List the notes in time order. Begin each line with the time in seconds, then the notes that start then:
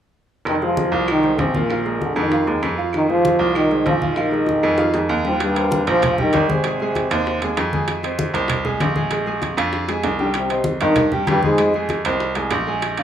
0.45 F1 D#4, high bongo, high conga, claves
0.49 D#3
0.62 F3 G#3 F4 G#4 C5, high bongo, high conga
0.77 high bongo, high conga
0.92 C2 F3 F4 F5, high bongo, high conga
1.08 D#3 D#4, high bongo, high conga, claves
1.24 G#3 G#4 C5, high bongo, high conga
1.39 A#1 C3 C4, high bongo, low bongo, high conga
1.54 A#2 F3 A#3 F4 F5, high conga
1.70 F3 F4 F5, high bongo, high conga, claves
1.86 G#3 G#4 A#4, high bongo, high conga
2.01 D3 D4, high bongo, high conga
2.16 F2 D#3 G#3 D#4 G#4 A#4, high conga, claves
2.32 F3 F4 F5, high bongo, high conga
2.47 D#2 G#3 G#4 A#4, high bongo, high conga
2.62 F2, high bongo, low bongo, high conga, claves
2.77 F3 F4 F5, high bongo
2.93 D#3 D#4, high bongo, high conga, claves
3.08 F3 G#3 F4 G#4 C5, high bongo, high conga
3.25 high bongo, high conga
3.39 C2 F3 F4 F5, high bongo, high conga
3.55 D#3 D#4, high bongo, high conga, claves
3.71 G#3 G#4 C5, high bongo, high conga
3.86 A#1 F3 F4, high bongo, low bongo, high conga
4.01 D#3 F3 D#4 F4 F5, high conga
4.16 F3 F4 F5, high bongo, high conga, claves
4.31 G#3 G#4 A#4, high bongo, high conga
4.46 high bongo, high conga
4.62 F2 G#3 G#4 A#4, high conga, claves
4.78 F3 F4 F5, high bongo, high conga
4.93 F2 G#3 G#4 A#4, high bongo, high conga
5.09 D#2, low bongo, high conga, claves
5.25 F3 G3 F4 G4 G5, low bongo
5.40 G2 G3, high bongo, high conga, high timbale
5.56 A#3 A#4 C5, high bongo, high conga, high timbale
5.71 high bongo, high conga
5.87 A#1 F3 A#3 F4 A#4 C5, high bongo, high conga, high timbale
6.02 high bongo, high conga, low conga, high timbale
6.18 D#3 G3 D#4 G4 G5, high bongo, high conga, low conga
6.33 G#1, high bongo, low bongo, high conga, high timbale
6.49 C3 G#3 C4 G#4 G#5, high conga
6.64 G#3 G#4 G#5, high bongo, high conga, high timbale
6.80 G#3 G#4 G#5, high bongo, high conga
6.95 high bongo, high conga, high timbale
7.10 D#2 C4 C5 D#5, high conga, high timbale
7.26 high bongo, high conga
7.41 D#2 G#3 G#4 G#5, high bongo, high conga, high timbale
7.57 F2, high bongo, low bongo, high conga, high timbale
7.72 G#3 G#4 G#5, high bongo, high conga
7.88 high bongo, high conga, high timbale
8.03 C4 C5 D#5, high bongo, high conga, high timbale
8.19 high bongo, high conga
8.33 C2 C4 C5 D#5, high bongo, high conga, high timbale
8.48 high bongo, high conga, low conga, high timbale
8.65 G#3 G#4 G#5, high bongo, high conga, low conga
8.80 A#1, high bongo, low bongo, high conga, high timbale
8.96 G#3 G#4 G#5, high conga
9.11 G#3 G#4 G#5, high bongo, high conga, high timbale
9.26 G#3 G#4 G#5, high bongo, high conga
9.42 high bongo, high conga, high timbale
9.57 F2 D4 D5 F5, high conga, high timbale
9.73 high bongo, high conga
9.88 G#3 G#4 G#5, high bongo, high conga, high timbale
10.03 C2, low bongo, high conga, high timbale, low timbale
10.19 D3 G3 D4 G4 G5, low bongo
10.34 C3 C4, high bongo, high conga, high timbale
10.49 C4 C5 D#5, high bongo, high conga, high timbale
10.64 high bongo, high conga
10.81 G2 D#3 C4 D#4 C5 D#5, high bongo, high conga, high timbale
10.96 high bongo, high conga, low conga, high timbale
11.12 G3 G4 G5, high bongo, high conga, low conga
11.27 F2 G2 G3, high bongo, low bongo, high conga, high timbale
11.43 G#2 G#3 G#4 G#5, high conga
11.58 G#3 G#4 G#5, high bongo, high conga, high timbale
11.74 G#3 G#4 G#5, high bongo, high conga
11.89 high bongo, high conga, high timbale
12.05 C2 C4 C5 D#5, high conga, high timbale
12.20 high bongo, high conga
12.35 C2 G#3 G#4 G#5, high bongo, high conga, high timbale
12.51 A#1, high bongo, low bongo, high conga, high timbale, low timbale
12.67 G#3 G#4 G#5, high bongo
12.82 high bongo, high conga, high timbale
12.97 D4 D5 F5, high bongo, high conga, high timbale